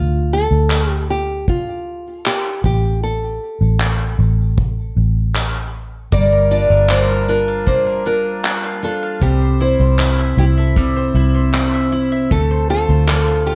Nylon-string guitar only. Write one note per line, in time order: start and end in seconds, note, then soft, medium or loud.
0.00 0.33 F4 medium
0.33 0.91 A4 loud
0.91 1.10 G4 loud
1.10 1.46 G4 medium
1.49 2.28 F4 medium
2.26 2.62 G4 medium
2.65 3.01 G4 medium
3.03 4.54 A4 medium
6.13 6.49 D5 medium
6.51 6.87 D5 medium
6.90 7.26 C5 medium
7.29 7.65 A#4 medium
7.67 8.03 C5 medium
8.07 8.84 A#4 medium
8.84 9.24 A4 medium
9.23 9.62 G4 medium
9.62 10.39 C5 medium
10.39 10.44 G4 medium
10.59 11.74 A4 medium
12.32 12.69 A4 medium
12.70 13.46 A4 loud
13.46 13.55 G4 medium